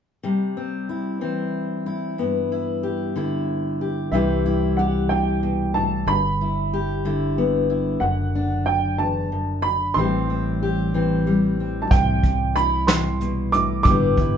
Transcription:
0.23 1.21 C3 medium
0.23 2.19 G3 soft
0.57 1.20 C4 soft
0.89 1.86 E4 soft
1.21 3.15 E3 soft
1.21 2.15 C4 soft
1.86 2.51 E4 soft
2.18 4.09 G2 soft
2.18 4.10 B3 soft
2.52 3.15 E4 soft
2.83 3.80 G4 soft
3.16 4.13 D3 medium
3.16 4.10 E4 soft
3.81 4.09 G4 soft
4.12 6.03 C2 medium
4.12 5.09 C3 medium
4.12 6.04 E3 soft
4.12 7.38 G3 soft
4.12 4.45 E4 soft
4.12 4.79 G4 soft
4.12 4.79 E5 medium
4.46 6.04 E4 soft
4.77 6.04 G4 medium
4.77 5.11 F#5 medium
5.09 5.42 C3 medium
5.09 5.77 G5 medium
5.43 5.75 B2 medium
5.74 6.08 A2 soft
5.74 6.08 A5 medium
6.07 7.98 G1 medium
6.07 7.99 G2 medium
6.07 7.33 B5 medium
6.41 7.04 E4 soft
6.73 7.99 G4 medium
7.05 9.97 D3 medium
7.05 7.69 E4 medium
7.38 7.99 B3 soft
7.70 7.98 E4 soft
8.00 9.92 F#1 medium
8.00 8.99 F#2 medium
8.00 8.68 F#5 medium
8.35 9.93 D4 soft
8.66 9.00 G5 medium
8.98 9.32 E2 medium
8.98 9.60 A5 medium
9.32 9.64 F#2 medium
9.62 9.97 B5 medium
9.94 11.87 A1 medium
9.94 11.91 A2 medium
9.94 10.94 E3 medium
9.94 11.27 G3 soft
9.94 11.21 C6 medium
9.99 10.30 C4 medium
9.99 10.62 G4 medium
10.30 10.95 C4 soft
10.62 12.57 G4 medium
10.94 13.87 E3 medium
10.94 11.59 C4 soft
11.27 13.86 G3 soft
11.60 11.88 C4 soft
11.82 11.90 A5 medium
11.91 13.82 C2 medium
11.91 12.87 C3 medium
11.91 12.52 G5 medium
11.91 kick loud
11.91 closed hi-hat medium
12.23 kick medium
12.23 closed hi-hat soft
12.56 13.86 E4 medium
12.56 12.86 B5 medium
12.56 closed hi-hat soft
12.87 13.21 C3 medium
12.87 13.55 C6 medium
12.87 snare medium
12.87 closed hi-hat medium
13.21 13.53 B2 medium
13.21 closed hi-hat soft
13.52 13.86 A2 soft
13.52 13.82 D6 medium
13.52 closed hi-hat soft
13.83 14.37 G1 medium
13.83 14.37 G2 medium
13.83 14.37 D6 medium
13.83 kick medium
13.83 closed hi-hat medium
13.87 14.37 D3 medium
13.87 14.37 B3 medium
13.87 14.18 E4 medium
13.87 14.37 G4 medium
14.17 14.37 E4 soft
14.17 kick medium
14.17 closed hi-hat soft

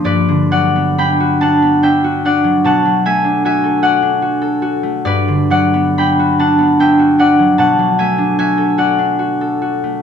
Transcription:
0.00 1.22 G3 soft
0.00 0.97 D4 medium
0.04 2.67 G2 medium
0.04 3.96 B4 medium
0.04 0.52 D5 medium
0.29 2.67 D3 medium
0.51 2.43 F#3 soft
0.51 2.25 D5 medium
0.51 1.41 F#5 medium
0.76 1.61 B3 medium
0.98 1.40 D4 medium
0.98 1.82 G5 medium
0.98 4.88 B5 medium
1.20 2.03 F#4 medium
1.41 1.82 D4 medium
1.41 2.24 F#5 medium
1.41 2.11 A5 medium
1.62 5.52 B3 medium
1.83 2.24 D4 medium
1.83 2.68 E5 medium
1.83 2.68 G5 medium
2.04 3.44 F#4 medium
2.25 3.23 D4 medium
2.25 3.82 D5 medium
2.25 2.65 F#5 medium
2.44 2.84 F#3 medium
2.64 5.09 B2 medium
2.64 3.81 F#5 medium
2.64 5.09 A5 loud
2.85 5.49 F#3 medium
3.05 4.82 A3 soft
3.05 3.45 E5 medium
3.05 3.44 G#5 loud
3.25 4.01 D4 medium
3.45 3.81 F#4 medium
3.45 5.10 E5 medium
3.45 5.10 G#5 medium
3.64 4.40 A4 medium
3.82 4.21 F#4 medium
3.82 5.04 D5 medium
3.82 5.50 F#5 medium
4.03 5.96 D4 medium
4.22 4.61 F#4 medium
4.42 5.09 A4 medium
4.62 6.18 F#4 medium
4.83 5.09 A3 medium
5.05 7.63 G2 medium
5.05 8.97 B4 medium
5.05 5.50 D5 loud
5.28 7.63 D3 medium
5.50 7.38 F#3 medium
5.50 7.19 D5 medium
5.50 6.39 F#5 medium
5.74 6.57 B3 medium
5.97 6.38 D4 medium
5.97 6.79 G5 medium
5.97 9.88 B5 loud
6.19 6.98 F#4 medium
6.39 6.79 D4 medium
6.39 7.18 F#5 medium
6.39 7.07 A5 loud
6.59 10.02 B3 medium
6.79 7.18 D4 medium
6.79 7.63 E5 medium
6.79 7.62 G5 loud
6.99 8.38 F#4 medium
7.18 8.17 D4 medium
7.18 8.78 D5 medium
7.18 7.58 F#5 medium
7.39 7.78 F#3 soft
7.58 10.02 B2 medium
7.58 8.77 F#5 medium
7.58 10.02 A5 loud
7.79 10.02 F#3 medium
7.98 9.82 A3 soft
7.98 8.38 E5 medium
7.98 8.37 G#5 medium
8.18 8.97 D4 medium
8.39 8.77 F#4 medium
8.39 10.02 E5 medium
8.39 10.02 G#5 medium
8.58 9.40 A4 medium
8.78 9.18 F#4 medium
8.78 10.02 D5 medium
8.78 10.02 F#5 medium
8.99 10.02 D4 medium
9.19 9.60 F#4 medium
9.41 10.02 A4 medium
9.62 10.02 F#4 medium
9.84 10.02 A3 soft

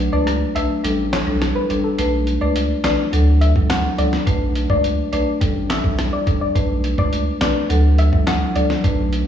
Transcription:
0.12 0.39 C#2 medium
0.12 0.52 A3 medium
0.12 0.52 D4 medium
0.12 0.52 B4 medium
0.12 0.21 D5 medium
0.27 cross-stick medium
0.27 closed hi-hat medium
0.55 0.69 B1 medium
0.55 0.82 A3 medium
0.55 0.82 D4 medium
0.55 0.82 B4 medium
0.55 0.64 E5 medium
0.55 closed hi-hat medium
0.84 1.23 A1 loud
0.84 1.23 G3 medium
0.84 1.24 D4 medium
0.84 1.24 A4 loud
0.84 closed hi-hat medium
1.13 1.21 C#5 medium
1.13 snare loud
1.13 clap medium
1.13 closed hi-hat soft
1.27 1.53 B1 loud
1.27 1.66 G3 medium
1.27 1.67 D4 medium
1.27 1.67 A4 medium
1.42 cross-stick medium
1.42 snare medium
1.42 closed hi-hat medium
1.55 1.64 B4 medium
1.70 1.83 A1 medium
1.70 1.96 G3 medium
1.70 1.96 D4 medium
1.70 1.96 A4 medium
1.70 closed hi-hat soft
1.84 1.93 A4 medium
1.98 2.37 B1 loud
1.98 2.38 A3 loud
1.98 2.38 D4 medium
1.98 2.38 B4 loud
1.98 closed hi-hat medium
2.27 closed hi-hat soft
2.41 2.67 C#2 medium
2.41 2.81 A3 medium
2.41 2.81 D4 medium
2.41 2.81 B4 medium
2.41 2.50 D5 medium
2.56 closed hi-hat medium
2.84 2.97 B1 medium
2.84 3.10 A3 medium
2.84 3.11 D4 medium
2.84 3.11 B4 medium
2.84 2.93 D5 medium
2.84 snare loud
2.84 clap medium
2.84 closed hi-hat medium
3.13 3.52 D2 loud
3.13 3.52 F#3 medium
3.13 3.52 D4 medium
3.13 3.52 A4 loud
3.13 closed hi-hat medium
3.41 3.50 E5 medium
3.41 closed hi-hat soft
3.56 3.81 C#2 loud
3.56 3.95 F#3 medium
3.56 3.95 D4 medium
3.56 3.95 A4 medium
3.56 kick medium
3.70 3.78 F#5 medium
3.70 cross-stick medium
3.70 snare loud
3.70 clap loud
3.70 closed hi-hat medium
3.98 4.11 C#2 medium
3.98 4.25 F#3 medium
3.98 4.25 D4 medium
3.98 4.25 A4 medium
3.98 4.07 D5 medium
3.98 closed hi-hat soft
4.13 snare medium
4.27 4.66 B1 loud
4.27 4.66 A3 loud
4.27 4.66 D4 medium
4.27 4.67 B4 loud
4.27 kick loud
4.27 closed hi-hat medium
4.55 closed hi-hat soft
4.70 4.96 C#2 medium
4.70 5.09 A3 medium
4.70 5.09 D4 medium
4.70 5.10 B4 medium
4.70 4.78 D5 medium
4.70 kick medium
4.84 closed hi-hat medium
5.12 5.26 B1 medium
5.12 5.39 A3 medium
5.12 5.39 D4 medium
5.12 5.39 B4 medium
5.12 5.21 D5 medium
5.12 closed hi-hat medium
5.41 5.80 A1 loud
5.41 5.81 G3 medium
5.41 5.81 D4 medium
5.41 5.81 A4 loud
5.41 kick medium
5.41 closed hi-hat medium
5.70 5.78 E5 medium
5.70 snare loud
5.70 clap medium
5.70 closed hi-hat soft
5.84 6.10 B1 medium
5.84 6.23 G3 medium
5.84 6.24 D4 medium
5.84 6.24 A4 medium
5.84 kick medium
5.99 cross-stick loud
5.99 snare medium
5.99 closed hi-hat medium
6.13 6.21 D5 medium
6.27 6.40 A1 medium
6.27 6.53 G3 medium
6.27 6.53 D4 medium
6.27 6.53 A4 medium
6.27 kick loud
6.27 closed hi-hat soft
6.41 6.50 D5 medium
6.55 6.94 B1 loud
6.55 6.95 A3 loud
6.55 6.95 D4 medium
6.55 6.95 B4 loud
6.55 kick loud
6.55 closed hi-hat medium
6.84 closed hi-hat soft
6.98 7.24 C#2 medium
6.98 7.38 A3 medium
6.98 7.38 D4 medium
6.98 7.38 B4 medium
6.98 7.07 D5 medium
6.98 kick medium
7.13 closed hi-hat medium
7.41 7.54 B1 medium
7.41 7.68 A3 medium
7.41 7.68 D4 medium
7.41 7.68 B4 medium
7.41 7.50 D5 medium
7.41 snare loud
7.41 clap medium
7.41 closed hi-hat medium
7.70 8.09 D2 loud
7.70 8.09 F#3 medium
7.70 8.09 D4 medium
7.70 8.10 A4 loud
7.70 closed hi-hat medium
7.98 8.07 E5 medium
7.98 closed hi-hat soft
8.12 8.39 C#2 loud
8.12 8.52 F#3 medium
8.12 8.52 D4 medium
8.12 8.52 A4 medium
8.12 kick medium
8.27 8.36 F#5 medium
8.27 cross-stick loud
8.27 snare loud
8.27 clap loud
8.27 closed hi-hat medium
8.55 8.68 C#2 medium
8.55 8.82 F#3 medium
8.55 8.82 D4 medium
8.55 8.82 A4 medium
8.55 8.64 D5 medium
8.55 closed hi-hat soft
8.70 snare medium
8.84 9.23 B1 loud
8.84 9.24 A3 loud
8.84 9.24 D4 medium
8.84 9.24 B4 loud
8.84 kick loud
8.84 closed hi-hat medium
9.13 closed hi-hat soft

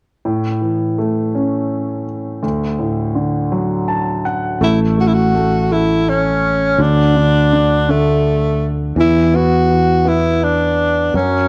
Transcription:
0.25 2.39 A2 soft
0.61 2.03 E3 soft
0.98 2.39 A3 soft
1.35 2.40 C#4 soft
2.43 4.57 D2 soft
2.79 4.21 A2 soft
3.15 4.57 D3 soft
3.52 4.58 F#3 soft
3.88 4.22 A5 soft
4.25 4.59 F#5 soft
4.61 6.76 A1 medium
4.61 4.96 A3 soft
4.61 4.79 E4 medium
4.98 5.33 A3 soft
4.98 5.09 F#4 medium
5.07 5.15 E4 medium
5.14 5.74 F#4 medium
5.35 5.70 A3 soft
5.72 6.77 A3 soft
5.72 6.11 E4 medium
6.09 6.83 C#4 medium
6.78 8.93 D2 medium
6.78 7.15 D3 soft
6.78 7.92 D4 medium
7.16 7.51 D3 soft
7.53 7.87 D3 soft
7.88 8.94 D3 soft
7.88 8.71 A3 medium
8.96 11.09 E2 medium
8.96 9.68 E3 medium
9.00 9.37 E4 medium
9.34 10.04 B3 soft
9.34 10.09 F#4 medium
9.70 11.10 E3 soft
10.05 11.11 B3 soft
10.05 10.45 E4 medium
10.43 11.15 D4 medium
11.14 11.48 F#2 medium
11.14 11.48 F#3 soft
11.14 11.48 C#4 medium

